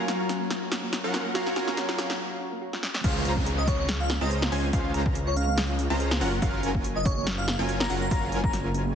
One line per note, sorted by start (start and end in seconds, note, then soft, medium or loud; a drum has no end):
0.00 1.01 F#3 medium
0.00 1.32 F#3 medium
0.00 1.01 C#4 medium
0.00 1.01 F4 medium
0.00 1.34 F#4 medium
0.00 1.01 A#4 medium
0.00 1.35 C#5 medium
0.00 1.35 F5 medium
0.00 1.01 G#5 loud
0.00 1.36 A#5 loud
0.08 0.13 F#4 medium
0.08 snare medium
0.08 closed hi-hat medium
0.20 0.23 F4 medium
0.29 0.36 C#4 medium
0.29 snare medium
0.29 closed hi-hat medium
0.41 0.44 A#3 medium
0.50 0.57 F#4 medium
0.50 snare medium
0.50 closed hi-hat medium
0.62 0.67 F4 medium
0.72 0.76 C#4 medium
0.72 snare medium
0.72 closed hi-hat medium
0.83 0.87 A#3 medium
0.93 0.97 F#4 medium
0.93 snare medium
0.93 closed hi-hat medium
1.04 1.33 F#3 medium
1.04 1.33 C#4 medium
1.04 1.08 F4 medium
1.04 1.33 F4 medium
1.04 1.33 A#4 medium
1.04 1.33 F#5 medium
1.14 1.20 C#4 medium
1.14 snare medium
1.14 closed hi-hat medium
1.25 1.29 A#3 medium
1.34 1.54 F#3 medium
1.34 1.54 C#4 medium
1.34 1.54 F4 medium
1.34 1.64 F#4 loud
1.34 1.41 F#4 medium
1.34 1.54 A#4 medium
1.34 1.65 C#5 medium
1.34 1.54 F5 medium
1.34 1.65 F5 medium
1.34 1.65 A#5 loud
1.34 snare medium
1.34 closed hi-hat medium
1.46 1.52 F4 medium
1.46 snare medium
1.56 2.20 F#3 medium
1.56 1.60 C#4 medium
1.56 2.20 C#4 medium
1.56 2.20 F4 medium
1.56 2.20 A#4 medium
1.56 2.20 G#5 loud
1.56 snare medium
1.56 closed hi-hat medium
1.66 2.19 F#3 medium
1.66 1.71 A#3 medium
1.66 2.19 C#5 medium
1.66 2.20 F5 medium
1.66 2.21 A#5 medium
1.66 snare medium
1.77 1.82 F#4 medium
1.77 snare loud
1.77 closed hi-hat medium
1.89 1.92 F4 medium
1.89 snare medium
1.98 2.05 C#4 medium
1.98 snare loud
1.98 closed hi-hat medium
2.10 2.13 A#3 medium
2.10 snare medium
2.19 2.26 F#4 medium
2.31 2.36 F4 medium
2.41 2.45 C#4 medium
2.52 2.56 A#3 medium
2.62 2.66 F#4 medium
2.73 2.77 F4 medium
2.73 snare medium
2.83 2.89 C#4 medium
2.83 snare medium
2.94 2.98 A#3 medium
2.94 snare medium
3.04 3.23 C#2 loud
3.04 3.23 G#3 medium
3.04 3.23 C#4 medium
3.04 3.23 F4 medium
3.04 3.10 G#4 medium
3.04 3.23 C5 medium
3.04 3.23 F5 medium
3.04 kick loud
3.04 closed hi-hat medium
3.04 crash loud
3.04 downlifter medium
3.15 3.21 F4 medium
3.25 4.19 C#2 loud
3.25 4.19 G#3 medium
3.25 3.29 C#4 medium
3.25 4.19 C#4 medium
3.25 4.19 F4 medium
3.25 4.19 C5 medium
3.25 4.19 A#5 loud
3.25 closed hi-hat medium
3.37 3.40 C4 medium
3.37 kick medium
3.46 3.51 G#4 medium
3.46 closed hi-hat medium
3.58 3.61 F4 medium
3.58 3.65 D#5 medium
3.67 3.74 C#4 medium
3.67 3.75 C#5 medium
3.67 kick loud
3.67 closed hi-hat medium
3.79 3.83 C4 medium
3.79 3.85 C#5 medium
3.89 3.95 G#4 medium
3.89 snare loud
3.89 closed hi-hat medium
4.00 4.05 F4 medium
4.00 4.09 F5 medium
4.10 4.14 C#4 medium
4.10 snare medium
4.10 closed hi-hat medium
4.21 4.50 C#2 loud
4.21 4.50 G#3 loud
4.21 4.25 C4 medium
4.21 4.50 C#4 medium
4.21 4.50 F4 medium
4.21 4.50 C5 medium
4.21 4.30 D#5 medium
4.21 4.50 A#5 loud
4.31 4.35 G#4 medium
4.31 closed hi-hat medium
4.42 4.46 F4 medium
4.42 snare medium
4.52 4.71 C#2 loud
4.52 4.67 G#3 medium
4.52 4.67 C#4 medium
4.52 4.58 C#4 medium
4.52 4.67 F4 medium
4.52 4.67 C5 medium
4.52 4.67 G#5 loud
4.52 open hi-hat medium
4.64 4.67 C4 medium
4.73 4.92 C#2 loud
4.73 4.92 G#3 medium
4.73 4.92 C#4 medium
4.73 4.92 F4 medium
4.73 4.80 G#4 medium
4.73 4.92 C5 medium
4.73 4.92 F5 medium
4.73 kick loud
4.73 closed hi-hat medium
4.85 4.90 F4 medium
4.94 5.88 C#2 loud
4.94 5.88 G#3 loud
4.94 4.99 C#4 medium
4.94 5.88 C#4 medium
4.94 5.88 F4 medium
4.94 5.88 C5 medium
4.94 5.88 A#5 loud
4.94 closed hi-hat medium
5.06 kick loud
5.15 5.20 G#4 medium
5.15 closed hi-hat medium
5.27 5.30 F4 medium
5.27 5.35 C#5 medium
5.37 5.43 C#4 medium
5.37 5.44 F5 medium
5.37 closed hi-hat medium
5.48 5.52 C4 medium
5.48 5.54 F5 medium
5.58 5.64 G#4 medium
5.58 snare loud
5.58 closed hi-hat medium
5.69 5.74 F4 medium
5.79 5.83 C#4 medium
5.79 closed hi-hat medium
5.90 6.22 C#2 loud
5.90 6.19 G#3 loud
5.90 5.94 C4 medium
5.90 6.19 C#4 medium
5.90 6.19 F4 medium
5.90 6.19 C5 medium
5.90 6.19 A#5 loud
6.00 6.04 G#4 medium
6.00 closed hi-hat medium
6.11 6.15 F4 medium
6.11 snare medium
6.21 6.40 F#1 loud
6.21 6.36 F#3 medium
6.21 6.27 C#4 medium
6.21 6.36 C#4 medium
6.21 6.36 F4 medium
6.21 6.36 A#4 medium
6.21 6.36 F#5 loud
6.21 open hi-hat medium
6.32 6.36 A#3 medium
6.42 6.61 F#1 loud
6.42 6.61 F#3 medium
6.42 6.61 C#4 medium
6.42 6.61 F4 medium
6.42 6.48 F#4 medium
6.42 6.61 A#4 medium
6.42 6.61 F5 medium
6.42 kick loud
6.42 closed hi-hat medium
6.53 6.59 F4 medium
6.63 7.57 F#1 loud
6.63 7.57 F#3 medium
6.63 6.67 C#4 medium
6.63 7.57 C#4 medium
6.63 7.57 F4 medium
6.63 7.57 A#4 medium
6.63 7.57 G#5 loud
6.63 closed hi-hat medium
6.75 6.78 A#3 medium
6.75 kick medium
6.84 6.89 F#4 medium
6.84 closed hi-hat medium
6.96 6.99 F4 medium
6.96 7.04 D#5 medium
7.05 7.12 C#4 medium
7.05 7.13 C#5 medium
7.05 kick loud
7.05 closed hi-hat medium
7.17 7.21 A#3 medium
7.17 7.23 C#5 medium
7.27 7.33 F#4 medium
7.27 snare loud
7.27 closed hi-hat medium
7.38 7.43 F4 medium
7.38 7.47 F5 medium
7.48 7.52 C#4 medium
7.48 snare medium
7.48 closed hi-hat medium
7.59 7.88 F#1 medium
7.59 7.88 F#3 loud
7.59 7.63 A#3 medium
7.59 7.88 C#4 medium
7.59 7.88 F4 medium
7.59 7.88 A#4 medium
7.59 7.88 G#5 loud
7.69 7.73 F#4 medium
7.69 closed hi-hat medium
7.80 7.84 F4 medium
7.80 7.89 A#5 medium
7.80 snare medium
7.90 8.09 F#1 loud
7.90 8.05 F#3 medium
7.90 8.05 C#4 medium
7.90 7.96 C#4 medium
7.90 8.05 F4 medium
7.90 8.05 A#4 medium
7.90 8.05 F#5 loud
7.90 open hi-hat medium
8.01 8.05 A#3 medium
8.01 8.09 A#5 medium
8.11 8.30 F#1 loud
8.11 8.30 F#3 medium
8.11 8.30 C#4 medium
8.11 8.30 F4 medium
8.11 8.17 F#4 medium
8.11 8.30 A#4 medium
8.11 8.30 F5 medium
8.11 8.22 A#5 medium
8.11 kick loud
8.11 closed hi-hat medium
8.22 8.28 F4 medium
8.32 8.95 F#1 loud
8.32 8.95 F#3 medium
8.32 8.36 C#4 medium
8.32 8.95 C#4 medium
8.32 8.95 F4 medium
8.32 8.95 A#4 medium
8.32 8.95 G#5 loud
8.32 closed hi-hat medium
8.44 8.47 A#3 medium
8.44 8.53 A#5 medium
8.44 kick loud
8.53 8.58 F#4 medium
8.53 snare soft
8.53 closed hi-hat medium
8.65 8.68 F4 medium
8.74 8.81 C#4 medium
8.74 closed hi-hat medium
8.86 8.89 A#3 medium